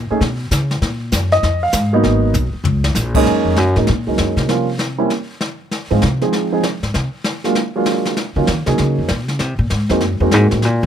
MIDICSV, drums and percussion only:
0, 0, Header, 1, 2, 480
1, 0, Start_track
1, 0, Key_signature, -5, "minor"
1, 0, Tempo, 306435
1, 1275, Time_signature, 4, 2, 24, 8
1, 17011, End_track
2, 0, Start_track
2, 0, Title_t, "Drums"
2, 325, Note_on_c, 9, 36, 25
2, 329, Note_on_c, 9, 25, 47
2, 329, Note_on_c, 9, 38, 42
2, 481, Note_off_c, 9, 36, 0
2, 486, Note_off_c, 9, 38, 0
2, 802, Note_on_c, 9, 36, 17
2, 803, Note_on_c, 9, 44, 63
2, 810, Note_on_c, 9, 38, 62
2, 958, Note_off_c, 9, 36, 0
2, 960, Note_off_c, 9, 44, 0
2, 966, Note_off_c, 9, 38, 0
2, 1108, Note_on_c, 9, 38, 40
2, 1264, Note_off_c, 9, 38, 0
2, 1279, Note_on_c, 9, 36, 22
2, 1283, Note_off_c, 9, 25, 0
2, 1283, Note_on_c, 9, 25, 47
2, 1283, Note_on_c, 9, 38, 45
2, 1436, Note_off_c, 9, 36, 0
2, 1440, Note_off_c, 9, 38, 0
2, 1753, Note_on_c, 9, 44, 52
2, 1757, Note_on_c, 9, 36, 26
2, 1759, Note_on_c, 9, 38, 64
2, 1910, Note_off_c, 9, 44, 0
2, 1914, Note_off_c, 9, 36, 0
2, 1916, Note_off_c, 9, 38, 0
2, 2064, Note_on_c, 9, 38, 35
2, 2221, Note_off_c, 9, 38, 0
2, 2237, Note_on_c, 9, 36, 18
2, 2241, Note_off_c, 9, 25, 0
2, 2241, Note_on_c, 9, 25, 47
2, 2241, Note_on_c, 9, 38, 44
2, 2393, Note_off_c, 9, 36, 0
2, 2398, Note_off_c, 9, 38, 0
2, 2704, Note_on_c, 9, 44, 60
2, 2710, Note_on_c, 9, 38, 68
2, 2713, Note_on_c, 9, 36, 19
2, 2861, Note_off_c, 9, 44, 0
2, 2867, Note_off_c, 9, 38, 0
2, 2869, Note_off_c, 9, 36, 0
2, 3190, Note_off_c, 9, 25, 0
2, 3190, Note_on_c, 9, 25, 60
2, 3190, Note_on_c, 9, 36, 29
2, 3190, Note_on_c, 9, 38, 49
2, 3347, Note_off_c, 9, 36, 0
2, 3347, Note_off_c, 9, 38, 0
2, 3666, Note_on_c, 9, 44, 57
2, 3672, Note_on_c, 9, 43, 45
2, 3823, Note_off_c, 9, 44, 0
2, 3829, Note_off_c, 9, 43, 0
2, 4150, Note_on_c, 9, 43, 78
2, 4306, Note_off_c, 9, 43, 0
2, 4450, Note_on_c, 9, 38, 74
2, 4607, Note_off_c, 9, 38, 0
2, 4623, Note_on_c, 9, 44, 56
2, 4629, Note_on_c, 9, 38, 54
2, 4780, Note_off_c, 9, 44, 0
2, 4786, Note_off_c, 9, 38, 0
2, 4927, Note_on_c, 9, 49, 77
2, 4930, Note_on_c, 9, 36, 76
2, 5084, Note_off_c, 9, 49, 0
2, 5087, Note_off_c, 9, 36, 0
2, 5107, Note_off_c, 9, 25, 0
2, 5107, Note_on_c, 9, 25, 48
2, 5107, Note_on_c, 9, 38, 40
2, 5264, Note_off_c, 9, 38, 0
2, 5582, Note_on_c, 9, 38, 57
2, 5738, Note_off_c, 9, 38, 0
2, 5887, Note_on_c, 9, 38, 33
2, 6044, Note_off_c, 9, 38, 0
2, 6060, Note_off_c, 9, 25, 0
2, 6060, Note_on_c, 9, 25, 41
2, 6060, Note_on_c, 9, 38, 42
2, 6217, Note_off_c, 9, 38, 0
2, 6545, Note_on_c, 9, 38, 54
2, 6701, Note_off_c, 9, 38, 0
2, 6850, Note_on_c, 9, 38, 37
2, 7007, Note_off_c, 9, 38, 0
2, 7028, Note_off_c, 9, 25, 0
2, 7028, Note_on_c, 9, 25, 48
2, 7028, Note_on_c, 9, 38, 45
2, 7184, Note_off_c, 9, 38, 0
2, 7503, Note_on_c, 9, 38, 60
2, 7660, Note_off_c, 9, 38, 0
2, 7989, Note_off_c, 9, 25, 0
2, 7989, Note_on_c, 9, 25, 49
2, 7989, Note_on_c, 9, 38, 42
2, 8146, Note_off_c, 9, 38, 0
2, 8468, Note_on_c, 9, 38, 53
2, 8625, Note_off_c, 9, 38, 0
2, 8951, Note_off_c, 9, 25, 0
2, 8951, Note_on_c, 9, 25, 50
2, 8951, Note_on_c, 9, 38, 42
2, 9108, Note_off_c, 9, 38, 0
2, 9427, Note_on_c, 9, 38, 60
2, 9584, Note_off_c, 9, 38, 0
2, 9734, Note_on_c, 9, 38, 32
2, 9891, Note_off_c, 9, 38, 0
2, 9910, Note_off_c, 9, 25, 0
2, 9910, Note_on_c, 9, 25, 53
2, 9910, Note_on_c, 9, 38, 42
2, 10067, Note_off_c, 9, 38, 0
2, 10393, Note_on_c, 9, 38, 63
2, 10549, Note_off_c, 9, 38, 0
2, 10697, Note_on_c, 9, 38, 39
2, 10854, Note_off_c, 9, 38, 0
2, 10873, Note_off_c, 9, 25, 0
2, 10873, Note_on_c, 9, 25, 49
2, 10873, Note_on_c, 9, 38, 47
2, 11029, Note_off_c, 9, 38, 0
2, 11346, Note_on_c, 9, 38, 61
2, 11503, Note_off_c, 9, 38, 0
2, 11658, Note_on_c, 9, 38, 32
2, 11814, Note_off_c, 9, 38, 0
2, 11827, Note_off_c, 9, 25, 0
2, 11827, Note_on_c, 9, 25, 46
2, 11827, Note_on_c, 9, 38, 44
2, 11984, Note_off_c, 9, 38, 0
2, 12309, Note_on_c, 9, 38, 60
2, 12466, Note_off_c, 9, 38, 0
2, 12616, Note_on_c, 9, 38, 38
2, 12773, Note_off_c, 9, 38, 0
2, 12793, Note_off_c, 9, 25, 0
2, 12793, Note_on_c, 9, 25, 49
2, 12793, Note_on_c, 9, 38, 47
2, 12950, Note_off_c, 9, 38, 0
2, 13272, Note_on_c, 9, 38, 60
2, 13428, Note_off_c, 9, 38, 0
2, 13569, Note_on_c, 9, 38, 37
2, 13726, Note_off_c, 9, 38, 0
2, 13750, Note_off_c, 9, 25, 0
2, 13750, Note_on_c, 9, 25, 48
2, 13750, Note_on_c, 9, 38, 42
2, 13907, Note_off_c, 9, 38, 0
2, 14231, Note_on_c, 9, 38, 56
2, 14387, Note_off_c, 9, 38, 0
2, 14540, Note_on_c, 9, 38, 38
2, 14696, Note_off_c, 9, 38, 0
2, 14710, Note_off_c, 9, 25, 0
2, 14710, Note_on_c, 9, 25, 52
2, 14710, Note_on_c, 9, 38, 50
2, 14867, Note_off_c, 9, 38, 0
2, 15196, Note_on_c, 9, 38, 58
2, 15352, Note_off_c, 9, 38, 0
2, 15498, Note_on_c, 9, 38, 37
2, 15654, Note_off_c, 9, 38, 0
2, 15672, Note_off_c, 9, 25, 0
2, 15672, Note_on_c, 9, 25, 52
2, 15672, Note_on_c, 9, 38, 43
2, 15829, Note_off_c, 9, 38, 0
2, 16155, Note_on_c, 9, 38, 63
2, 16311, Note_off_c, 9, 38, 0
2, 16463, Note_on_c, 9, 38, 42
2, 16620, Note_off_c, 9, 38, 0
2, 16638, Note_off_c, 9, 25, 0
2, 16638, Note_on_c, 9, 25, 51
2, 16638, Note_on_c, 9, 38, 46
2, 16794, Note_off_c, 9, 38, 0
2, 17011, Note_off_c, 9, 25, 0
2, 17011, End_track
0, 0, End_of_file